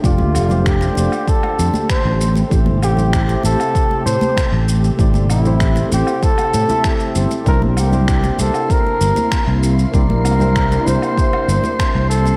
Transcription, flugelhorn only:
X:1
M:4/4
L:1/16
Q:1/4=97
K:Aphr
V:1 name="Flugelhorn"
F4 G4 A4 c3 z | z2 G4 A4 c4 z2 | z2 E4 G2 A6 z2 | B2 G4 A2 B6 z2 |
B6 c8 A2 |]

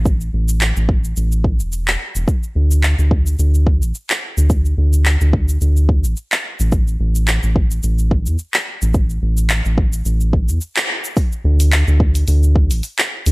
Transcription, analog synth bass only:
X:1
M:4/4
L:1/16
Q:"Swing 16ths" 1/4=108
K:Aphr
V:1 name="Analog synth bass" clef=bass
A,,,2 A,,,3 A,,,3 A,,,3 E,,,3 z E,,, | z2 D,,3 D,,3 D,,3 A,,, z3 D,,- | D,,2 D,,3 D,,3 D,,3 A,,, z3 A,,,- | A,,,2 A,,,3 A,,,3 A,,,3 E,, z3 A,,,- |
A,,,2 A,,,3 A,,,3 A,,,3 E,, z4 | z2 D,,3 D,,3 D,,3 A,,, z3 D,, |]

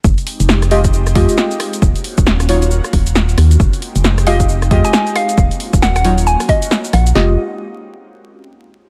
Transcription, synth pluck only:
X:1
M:4/4
L:1/16
Q:"Swing 16ths" 1/4=135
K:Ebdor
V:1 name="Synth pluck"
z16 | z16 | z6 f2 z3 a a z f2 | z4 g g z2 a2 e3 z g2 |
z16 |]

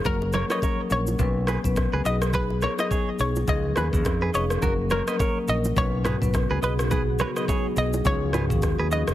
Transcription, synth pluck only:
X:1
M:4/4
L:1/16
Q:"Swing 16ths" 1/4=105
K:F#
V:1 name="Synth pluck"
A z c c z2 c z6 z d z | B z c d2 z c2 d z B z3 c z | z2 A z3 d2 c3 z3 B z | z2 B z3 d2 c3 z3 d z |]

